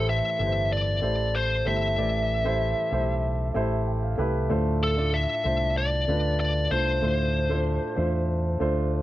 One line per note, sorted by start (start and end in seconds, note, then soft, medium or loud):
0.00 0.20 A1 loud
0.00 0.36 A2 medium
0.00 0.36 E3 medium
0.00 0.39 A3 medium
0.00 0.39 E4 medium
0.00 0.40 G4 medium
0.00 0.47 C5 loud
0.09 0.72 E5 loud
0.39 0.99 G1 medium
0.39 0.86 A3 medium
0.39 0.87 E4 medium
0.39 0.87 G4 medium
0.39 0.47 B4 medium
0.47 0.90 C5 medium
0.73 1.37 D5 loud
1.01 1.62 A1 loud
1.01 1.49 A3 medium
1.01 1.49 E4 medium
1.01 1.50 G4 medium
1.01 1.50 C5 medium
1.36 1.68 C5 medium
1.65 1.95 G1 medium
1.65 1.89 A3 medium
1.65 1.90 E4 medium
1.65 1.90 G4 medium
1.65 1.90 C5 medium
1.65 4.15 E5 loud
1.97 2.72 A1 loud
1.97 2.89 A2 medium
1.97 2.89 E3 medium
1.97 2.33 A3 medium
1.97 2.33 E4 medium
1.97 2.33 G4 medium
1.97 2.33 D5 medium
2.44 2.80 A3 medium
2.44 2.80 E4 medium
2.44 2.80 G4 medium
2.44 2.81 C5 loud
2.92 3.51 B1 medium
2.92 3.39 A3 medium
2.92 3.39 E4 medium
2.92 3.39 G4 medium
2.92 3.40 C5 medium
3.54 4.14 A1 medium
3.54 4.02 A3 medium
3.54 4.02 E4 medium
3.54 4.03 G4 medium
3.54 4.03 C5 medium
3.87 4.02 G5 medium
4.03 4.47 F5 medium
4.18 4.48 C2 medium
4.18 4.42 A3 medium
4.18 4.42 E4 medium
4.18 4.42 G4 medium
4.18 4.42 B4 medium
4.49 5.25 D2 medium
4.49 5.41 A2 medium
4.49 4.85 A3 medium
4.49 4.85 D4 medium
4.49 4.86 F4 medium
4.49 4.86 C5 medium
4.83 5.15 A4 medium
4.97 5.32 A3 medium
4.97 5.33 D4 medium
4.97 5.33 F4 medium
4.97 5.33 D5 medium
5.14 5.77 E5 medium
5.44 6.04 C2 medium
5.44 5.91 A3 medium
5.44 5.92 D4 medium
5.44 5.92 F4 medium
5.44 5.92 C5 medium
5.78 6.39 D5 medium
6.08 6.67 D2 medium
6.08 6.55 A3 medium
6.08 6.55 D4 medium
6.08 6.55 F4 medium
6.08 6.56 B4 medium
6.40 6.69 D5 medium
6.71 7.00 C2 medium
6.71 6.94 A3 medium
6.71 6.95 D4 medium
6.71 6.95 F4 medium
6.71 9.02 C5 loud
6.71 6.95 C5 medium
7.02 7.77 D2 medium
7.02 7.93 A2 medium
7.02 7.38 A3 medium
7.02 7.38 D4 medium
7.02 7.38 F4 medium
7.02 7.38 C5 medium
7.49 7.85 A3 medium
7.49 7.85 D4 medium
7.49 7.85 F4 medium
7.49 7.86 C5 medium
7.96 8.57 E2 loud
7.96 8.44 A3 medium
7.96 8.44 D4 medium
7.96 8.44 F4 medium
7.96 8.45 C5 medium
8.60 9.02 D2 medium
8.60 9.02 A3 medium
8.60 9.02 D4 medium
8.60 9.02 F4 medium
8.60 9.02 C5 medium